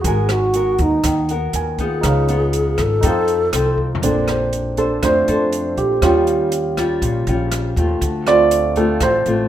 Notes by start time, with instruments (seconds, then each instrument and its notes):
Already playing: alto flute G#4
0.01 upright bass G#1, nylon-string guitar G#3 B3 F#4, grand piano F#4 A#4, kick, closed hi-hat
0.06 nylon-string guitar A#4, grand piano G#5
0.29 alto flute F#4, cross-stick, closed hi-hat
0.54 nylon-string guitar B3 F#4 A#4, closed hi-hat
0.79 upright bass D#2, alto flute D#4, kick, closed hi-hat
1.04 upright bass D#2, nylon-string guitar D#3, kick, cross-stick, closed hi-hat
1.29 nylon-string guitar B3 F#4 A#4, closed hi-hat
1.53 upright bass D#2, grand piano A#4 G#5, closed hi-hat
1.79 nylon-string guitar B3 D#4 F4, alto flute G#4, kick, closed hi-hat
2.01 upright bass C#2, nylon-string guitar C#3, grand piano D#4 B4, kick, cross-stick, closed hi-hat
2.06 grand piano C#5 F5
2.28 nylon-string guitar B3 D#4 F4, closed hi-hat
2.53 closed hi-hat
2.78 upright bass G#1, alto flute A4, kick, cross-stick, closed hi-hat
3.01 upright bass F2, nylon-string guitar F3 C4 D#4, grand piano D#4 A4, kick, closed hi-hat
3.05 nylon-string guitar A4, grand piano C5 F5
3.28 closed hi-hat
3.53 upright bass C2, nylon-string guitar C4 D#4 A4, cross-stick, closed hi-hat
3.78 kick
3.95 floor tom
4.02 upright bass A#1, nylon-string guitar A#3 D4 A4 C5, grand piano C4 D4, kick, closed hi-hat
4.28 grand piano C5, cross-stick, closed hi-hat
4.53 closed hi-hat
4.77 nylon-string guitar D4 A4 C5, grand piano A4, kick, closed hi-hat
5.02 upright bass F2, nylon-string guitar F3, grand piano A3 C4 D4 C5, kick, cross-stick, closed hi-hat
5.28 upright bass F2, nylon-string guitar D4 A4 C5, closed hi-hat
5.53 closed hi-hat
5.77 upright bass A#1, grand piano G4, kick, closed hi-hat
6.01 upright bass D#2, nylon-string guitar D#3 G3 C#4 F4, grand piano G3 C#4 F4, kick, cross-stick, closed hi-hat
6.27 closed hi-hat
6.52 closed hi-hat
6.77 nylon-string guitar G3 C#4 F4, kick, cross-stick, closed hi-hat
7.02 upright bass A#1, nylon-string guitar A#2, kick, closed hi-hat
7.27 upright bass A#1, nylon-string guitar G3 C#4 F4, closed hi-hat
7.52 cross-stick, closed hi-hat
7.76 upright bass D#2, nylon-string guitar A3 C4 F4, kick, closed hi-hat
8.01 upright bass D2, nylon-string guitar D3, kick, closed hi-hat
8.27 grand piano A3 C4 F4 D5, cross-stick, closed hi-hat
8.51 closed hi-hat
8.76 nylon-string guitar A3 C4 F4, grand piano A4, kick, closed hi-hat
9.00 upright bass A1, nylon-string guitar A2, grand piano C5, kick, cross-stick, closed hi-hat
9.26 upright bass A1, nylon-string guitar A3 C4 F4, closed hi-hat